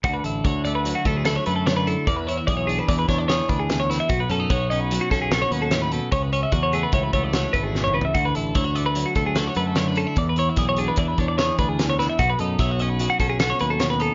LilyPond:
<<
  \new Staff \with { instrumentName = "Clean electric guitar" } { \time 5/4 \key d \lydian \tempo 4 = 148 fis'16 b'16 a'8 cis''8 d''16 b'8 fis'16 a'16 gis'16 a'16 cis''16 b'16 a'16 cis''16 b'16 a'8 | d''16 b'16 cis''16 e''16 d''16 cis''16 gis'16 b'16 d''16 b'16 cis''16 d''16 cis''8 b'16 gis'8 cis''16 b'16 e''16 | fis'16 b'16 a'8 cis''8 dis''16 b'8 fis'16 a'16 gis'16 a'16 cis''16 b'16 a'16 cis''16 b'16 a'8 | cis''16 b'16 cis''16 e''16 d''16 cis''16 gis'16 b'16 cis''16 b'16 cis''16 d''16 cis''8 b'16 gis'8 cis''16 b'16 e''16 |
fis'16 b'16 a'8 cis''8 d''16 b'8 fis'16 a'16 gis'16 a'16 cis''16 b'16 a'16 cis''16 b'16 a'8 | d''16 b'16 cis''16 e''16 d''16 cis''16 gis'16 b'16 d''16 b'16 cis''16 d''16 cis''8 b'16 gis'8 cis''16 b'16 e''16 | fis'16 b'16 a'8 cis''8 dis''16 b'8 fis'16 a'16 gis'16 a'16 cis''16 b'16 a'16 cis''16 b'16 a'8 | }
  \new Staff \with { instrumentName = "Clean electric guitar" } { \time 5/4 \key d \lydian << { r8 e'8 fis'8 a4 a8 e'16 fis'16 a4 e'8 | r8 e'8 gis'8 d'4 d'8 gis'8 d'4 e'8 | r8 cis'16 dis'16 fis'8 cis'4 cis'8 fis'8 cis'4. | r8 cis'8 fis'8 a4 a8 fis'8 a4.~ |
a8 e'8 e'16 fis'16 a4 a8 fis'8 a4 cis'16 e'16 | r8 e'8 gis'8 d'4 d'8 gis'8 d'4 e'8 | r8 dis'8 e'16 fis'16 cis'4 cis'8 fis'8 cis'4 dis'8 | } \\ { d2 fis2 d4 | e,2 e2 e,4 | b,2 fis2 a,8 b,8 | cis2 e2 b,8 cis8 |
d2 fis2 d4 | e,2 e2 e,4 | b,2 fis2 b,4 | } >> }
  \new Staff \with { instrumentName = "Fingered electric bass" } { \clef bass \time 5/4 \key d \lydian d,8 a,,8 d,4. d,4 fis,4. | e,4 b,,4 e,8 e,4 d,4. | b,,8 fis,8 b,,4. b,,4 dis,4. | cis,4 e,4 cis,8 cis,4 gis,,4. |
d,8 a,,8 d,4. d,4 fis,4. | e,4 b,,4 e,8 e,4 d,4. | b,,8 fis,8 b,,4. b,,4 dis,4. | }
  \new DrumStaff \with { instrumentName = "Drums" } \drummode { \time 5/4 <hh bd>8 hh8 <hh bd>8 hh8 hh8 <hh bd>8 <hh sn>8 hh8 <hh sn>8 hh8 | <hh bd>8 hh8 <hh bd>8 hh8 <hh bd>8 <hh bd sn>8 <hh sn>8 <hh bd>8 <hh sn>8 <hh sn>8 | <hh bd>8 hh8 <hh bd>8 hh8 hh8 <hh bd sn>8 <hh sn>8 hh8 <hh sn>8 hh8 | <hh bd>8 hh8 <hh bd>8 hh8 <hh bd>8 <hh bd>8 <hh sn>8 <hh bd>8 \tuplet 3/2 { sn8 toml8 tomfh8 } |
<hh bd>8 hh8 <hh bd>8 hh8 hh8 <hh bd>8 <hh sn>8 hh8 <hh sn>8 hh8 | <hh bd>8 hh8 <hh bd sn>8 hh8 <hh bd>8 <hh bd>8 <hh sn>8 <hh bd>8 <hh sn>8 <hh sn>8 | <hh bd>8 hh8 <hh bd sn>8 hh8 hh8 <hh bd>8 <hh sn>8 hh8 <hh sn>8 hh8 | }
>>